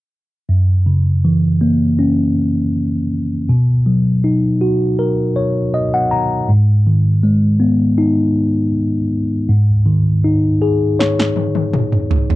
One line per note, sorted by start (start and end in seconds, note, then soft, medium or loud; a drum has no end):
0.49 3.45 F#2 soft
0.86 2.32 C#3 soft
1.25 2.70 E3 soft
1.61 3.07 A#3 soft
1.99 3.45 C#4 soft
3.49 6.45 B2 soft
3.86 5.32 F#3 soft
4.24 5.70 D#4 soft
4.61 6.07 F#4 soft
4.99 6.45 A#4 soft
5.36 5.71 C#5 soft
5.74 5.91 D#5 soft
5.94 6.11 F#5 soft
6.11 6.46 A#5 soft
6.49 9.45 G#2 soft
6.87 8.32 D#3 soft
7.23 8.70 G#3 soft
7.60 9.07 B3 soft
7.98 9.44 D#4 soft
9.49 12.36 G#2 soft
9.86 11.32 D#3 soft
10.24 11.70 D#4 soft
10.62 12.07 G#4 soft
10.99 12.36 C#5 soft
10.99 snare soft
11.19 snare soft
11.36 high tom soft
11.55 high tom soft
11.73 mid tom medium
11.92 mid tom soft
12.11 floor tom medium
12.30 floor tom medium